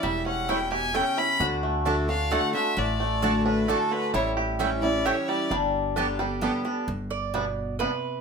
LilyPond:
<<
  \new Staff \with { instrumentName = "Fiddle" } { \time 3/4 \key g \major \tempo 4 = 131 e''8 fis''8 g''8 aes''8 g''8 b''8 | r4. f''8 fis''8 e''8 | d''4. b'8 a'8 b'8 | cis''8 r4 d''8 cis''8 d''8 |
r2. | r2. | }
  \new Staff \with { instrumentName = "Mandolin" } { \time 3/4 \key g \major r4 <a e' cis'' g''>8 r8 <a e' cis'' g''>8 r8 | r4 <a fis' d'' a''>8 r8 <a fis' d'' a''>8 r8 | r4 <a fis' d'' a''>8 r8 <a fis' d'' a''>8 r8 | r4 <a e' cis'' g''>8 r8 <a e' cis'' g''>8 r8 |
r4 <b g' d'' a''>8 r8 <b g' d'' a''>8 r8 | r8 d''4. b'4 | }
  \new Staff \with { instrumentName = "Resonator guitar played with a steel bar" } { \time 3/4 \key g \major e'2~ e'8 r8 | fis'2.~ | fis'2. | e'2. |
d'2~ d'8 r8 | r2. | }
  \new Staff \with { instrumentName = "Five-string banjo" } { \time 3/4 \key g \major <g cis' e'>8 cis'8 e'8 g'8 cis'8 e'8 | d'8 a8 d'8 d'8 a8 d8 | d'8 a8 d'8 d'8 a8 d8 | g8 g'8 cis'8 e'8 g'8 g8 |
g4 d'8 g8 b8 d'8 | r4 <g b d'>8 r8 <g b d'>8 r8 | }
  \new Staff \with { instrumentName = "Steel-string acoustic guitar" } { \time 3/4 \key g \major << { r2. | r4 <d a d' fis'>8 <d' fis'>8 <d a d' fis'>8 <d' fis'>8 | r4 <d a d' fis'>4 <d a d' fis'>4 | r4 <e g cis' e'>8 <cis' e'>8 <e g cis' e'>4 |
r4 <d g b g'>8 <b g'>8 <d g b g'>8 <b g'>8 | r2. | } \\ { e,4 b,4 cis4 | d2 r4 | a,2 r4 | a,2 r4 |
g,2 r4 | g,4 b,4 c4 | } >> }
  \new Staff \with { instrumentName = "Upright bass" } { \clef bass \time 3/4 \key g \major e,,2. | d,2. | a,,2. | a,,2. |
g,,2. | g,,2. | }
>>